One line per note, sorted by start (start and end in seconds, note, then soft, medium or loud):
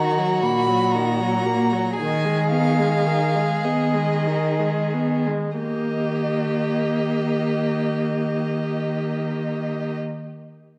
0.00 0.17 D#3 medium
0.00 0.20 D#3 soft
0.00 1.94 F#4 soft
0.00 0.43 A#5 medium
0.18 0.44 F#3 soft
0.42 1.71 A#2 medium
0.42 0.70 A#3 soft
0.42 0.93 B5 medium
0.68 0.96 F#3 soft
0.92 1.22 D#3 soft
0.92 1.95 A#5 medium
1.21 1.47 F#3 soft
1.46 1.74 A#3 soft
1.73 1.98 F#3 soft
1.96 3.36 D#3 medium
1.96 2.27 D#3 soft
1.96 5.26 G#4 medium
1.96 2.49 G#5 medium
2.25 2.53 G#3 soft
2.51 2.80 B3 soft
2.51 3.66 F5 medium
2.79 3.08 G#3 soft
3.07 3.37 D#3 soft
3.36 3.66 G#3 soft
3.64 5.27 D#3 medium
3.64 3.96 B3 soft
3.64 4.93 D#5 soft
3.94 4.28 G#3 soft
4.26 4.61 D#3 soft
4.59 4.95 G#3 soft
4.94 5.28 B3 soft
5.27 5.57 G#3 soft
5.56 9.98 D#3 soft
5.56 9.98 A#3 soft
5.56 9.98 G4 soft
5.56 9.97 D#5 soft